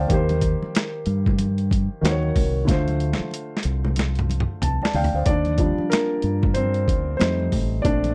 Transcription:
0.00 0.12 C5 soft
0.00 0.12 D5 medium
0.00 0.28 F5 medium
0.00 0.12 G5 medium
0.00 0.11 A5 medium
0.00 0.11 C6 medium
0.08 0.55 D#2 medium
0.08 1.99 D#3 medium
0.08 2.00 A#3 medium
0.08 kick loud
0.08 closed hi-hat medium
0.08 muted conga soft
0.08 low conga medium
0.12 2.01 G4 medium
0.12 2.02 C5 medium
0.29 closed hi-hat soft
0.29 high conga medium
0.41 kick medium
0.41 closed hi-hat medium
0.41 muted conga soft
0.62 muted fingered electric bass stroke soft
0.62 high conga medium
0.75 snare loud
0.75 closed hi-hat medium
1.06 1.87 G2 medium
1.06 closed hi-hat medium
1.26 kick medium
1.26 low conga medium
1.39 closed hi-hat medium
1.39 muted conga soft
1.39 high conga medium
1.58 closed hi-hat soft
1.71 kick medium
1.71 closed hi-hat medium
1.71 muted conga soft
1.71 high conga medium
2.01 2.31 D#2 loud
2.01 2.67 D#3 medium
2.01 2.67 A#3 medium
2.01 2.68 F#4 medium
2.01 2.12 C5 medium
2.01 closed hi-hat medium
2.01 muted conga soft
2.01 high conga medium
2.05 snare medium
2.11 2.72 C#5 medium
2.23 high conga soft
2.36 2.64 C2 medium
2.36 kick medium
2.36 open hi-hat soft
2.36 low conga medium
2.65 3.13 D2 loud
2.65 5.21 D3 medium
2.65 5.22 A3 medium
2.65 kick loud
2.65 closed hi-hat medium
2.65 muted conga soft
2.65 low conga medium
2.69 5.23 F4 medium
2.69 4.59 C5 medium
2.69 snare soft
2.88 closed hi-hat soft
2.88 high conga medium
3.00 closed hi-hat medium
3.13 snare medium
3.19 muted fingered electric bass stroke soft
3.19 high conga medium
3.31 closed hi-hat medium
3.31 muted conga soft
3.57 snare medium
3.63 4.45 C2 medium
3.63 closed hi-hat medium
3.85 low conga medium
3.96 snare medium
3.96 closed hi-hat medium
3.96 high conga medium
4.15 closed hi-hat soft
4.15 mid tom medium
4.29 closed hi-hat medium
4.29 muted conga soft
4.29 high conga medium
4.40 mid tom medium
4.62 4.79 C2 medium
4.62 4.81 A5 medium
4.62 closed hi-hat medium
4.62 floor tom medium
4.62 muted conga soft
4.62 high conga medium
4.82 4.94 D5 soft
4.82 4.94 A5 medium
4.82 snare medium
4.82 high conga soft
4.93 5.11 D2 medium
4.93 5.13 D5 medium
4.93 5.13 F5 medium
4.93 5.13 G5 medium
4.93 open hi-hat soft
4.93 muted conga soft
4.93 low conga medium
5.04 floor tom medium
5.14 5.24 D2 medium
5.14 5.45 C5 soft
5.14 5.45 F5 medium
5.26 5.71 D#2 medium
5.26 5.59 D4 medium
5.26 5.93 D5 medium
5.26 kick medium
5.26 closed hi-hat medium
5.26 low conga medium
5.45 closed hi-hat soft
5.45 high conga medium
5.58 7.16 F3 medium
5.58 7.16 G3 soft
5.58 7.17 D4 medium
5.58 kick medium
5.58 closed hi-hat medium
5.78 muted fingered electric bass stroke soft
5.78 high conga medium
5.90 6.52 A#3 medium
5.90 6.57 A#4 medium
5.90 snare loud
5.90 closed hi-hat medium
5.90 muted conga soft
6.22 6.88 G2 medium
6.22 closed hi-hat medium
6.43 kick medium
6.43 low conga medium
6.54 7.17 C4 medium
6.54 7.16 C5 medium
6.54 closed hi-hat medium
6.54 muted conga soft
6.54 high conga medium
6.74 closed hi-hat soft
6.88 7.15 D2 medium
6.88 kick medium
6.88 closed hi-hat medium
6.88 high conga medium
7.17 7.81 G3 soft
7.17 7.81 A3 soft
7.17 7.81 C4 medium
7.17 7.81 D#4 medium
7.17 7.85 C5 medium
7.17 closed hi-hat medium
7.17 muted conga soft
7.17 high conga medium
7.21 7.48 F2 medium
7.21 snare loud
7.40 high conga soft
7.52 7.80 A1 medium
7.52 kick medium
7.52 open hi-hat soft
7.52 muted conga soft
7.52 low conga medium
7.82 8.14 A#1 medium
7.82 8.14 A3 soft
7.82 8.14 C4 soft
7.82 8.14 D4 medium
7.82 8.14 D5 medium
7.82 kick loud
7.82 closed hi-hat medium
7.82 muted conga soft
7.82 low conga medium
8.04 closed hi-hat soft
8.04 high conga medium

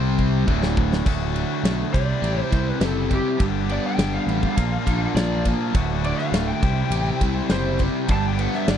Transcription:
0.00 0.43 C2 medium
0.00 0.45 C3 medium
0.00 0.46 C3 medium
0.00 0.46 G3 medium
0.00 0.47 G3 medium
0.00 0.47 C4 loud
0.00 0.47 C4 medium
0.00 0.47 G4 medium
0.00 0.47 C5 medium
0.19 kick medium
0.46 1.02 D1 medium
0.46 1.03 D2 medium
0.46 1.05 A2 medium
0.46 1.04 A2 medium
0.46 1.05 D3 medium
0.46 1.04 D3 medium
0.46 1.06 A3 medium
0.46 1.05 D4 medium
0.46 1.05 F#4 medium
0.46 1.05 D5 medium
0.46 kick medium
0.63 snare medium
0.77 kick loud
0.93 snare medium
1.04 1.43 D1 medium
1.04 1.91 D2 medium
1.04 1.92 D2 medium
1.04 1.91 A2 medium
1.04 1.92 D3 medium
1.04 1.92 A3 medium
1.04 1.93 F#4 loud
1.04 kick loud
1.04 crash loud
1.34 1.93 D3 medium
1.34 ride medium
1.63 1.82 B1 medium
1.63 1.93 A3 medium
1.63 snare loud
1.63 ride medium
1.93 2.13 C2 medium
1.93 3.39 C3 medium
1.93 3.38 C3 medium
1.93 3.38 G3 medium
1.93 3.38 C4 medium
1.93 3.39 E4 medium
1.93 3.39 G4 medium
1.93 3.39 C5 medium
1.93 2.50 D5 medium
1.93 kick loud
1.93 ride medium
2.22 2.41 A1 medium
2.22 2.79 G4 medium
2.22 ride medium
2.50 2.71 C2 medium
2.50 3.39 E4 medium
2.50 2.69 C5 medium
2.50 kick medium
2.50 ride medium
2.69 2.85 B4 medium
2.80 3.18 F#1 medium
2.80 3.39 G4 medium
2.80 snare loud
2.80 ride medium
2.85 3.12 A4 medium
3.09 3.39 C4 medium
3.09 kick medium
3.09 ride medium
3.14 3.41 G4 medium
3.39 3.77 G1 medium
3.39 4.55 G2 medium
3.39 4.56 G2 medium
3.39 4.55 D3 medium
3.39 4.56 G3 medium
3.39 4.56 B3 medium
3.39 4.56 D4 loud
3.39 4.57 G4 loud
3.39 kick loud
3.39 ride medium
3.69 4.57 B3 medium
3.69 3.85 D5 medium
3.69 ride medium
3.86 4.14 G5 medium
3.98 4.17 G1 medium
3.98 4.57 D4 medium
3.98 snare loud
3.98 ride medium
4.13 5.13 F5 medium
4.27 4.46 A1 medium
4.27 4.58 G3 medium
4.27 ride medium
4.43 kick medium
4.56 4.76 A#1 medium
4.56 5.72 A#2 medium
4.56 5.73 A#2 medium
4.56 5.73 F3 medium
4.56 5.73 A#3 medium
4.56 5.73 D4 medium
4.56 5.73 F4 medium
4.56 5.74 A#4 medium
4.56 kick medium
4.56 ride medium
4.86 5.05 A#1 medium
4.86 5.74 D4 medium
4.86 kick medium
4.86 ride medium
5.15 5.53 A#1 medium
5.15 5.75 F4 medium
5.15 5.44 D5 medium
5.15 snare loud
5.15 ride medium
5.45 5.75 A#3 medium
5.45 kick medium
5.45 ride medium
5.73 6.12 D1 loud
5.73 6.60 D2 medium
5.73 6.62 D2 medium
5.73 6.61 A2 medium
5.73 6.61 D3 medium
5.73 6.61 A3 loud
5.73 6.62 F#4 medium
5.73 kick loud
5.73 ride medium
6.04 6.63 D3 medium
6.04 6.18 D5 medium
6.04 ride medium
6.18 6.47 F5 loud
6.18 snare soft
6.32 6.51 D1 medium
6.32 6.63 A3 medium
6.32 snare loud
6.32 ride medium
6.48 7.48 G5 medium
6.61 6.81 C2 medium
6.61 8.07 C3 medium
6.61 8.09 C3 medium
6.61 8.08 G3 medium
6.61 8.08 C4 medium
6.61 8.08 E4 medium
6.61 8.08 G4 medium
6.61 8.09 C5 medium
6.61 kick loud
6.61 ride medium
6.90 7.10 A1 medium
6.90 7.49 G4 medium
6.90 ride medium
7.21 7.40 C2 medium
7.21 8.09 E4 medium
7.21 kick medium
7.21 ride medium
7.49 7.88 F#1 medium
7.49 8.09 G4 medium
7.49 7.80 C5 medium
7.49 snare loud
7.49 ride medium
7.79 8.10 C4 medium
7.79 kick medium
7.79 ride medium
8.08 8.47 G1 medium
8.08 8.78 G2 medium
8.08 8.78 D3 medium
8.08 8.78 G3 medium
8.08 8.78 B3 loud
8.08 8.78 D4 loud
8.08 8.78 G4 loud
8.08 8.25 A5 medium
8.08 kick loud
8.08 ride medium
8.28 8.40 G5 medium
8.39 8.78 B3 medium
8.39 8.54 F#5 medium
8.39 ride medium
8.53 8.70 E5 medium
8.53 snare soft
8.68 8.78 G1 medium
8.68 8.78 D4 medium
8.68 8.78 D5 medium
8.68 snare loud
8.68 ride medium

